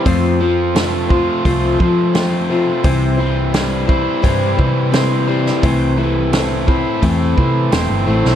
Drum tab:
HH |o---o---o---o---|o---o---o---o---|o---o---o---o---|
SD |----o-------o---|----o-------o--o|----o-------o--o|
BD |o-----o-o-o-----|o-----o-o-o-----|o-----o-o-o-----|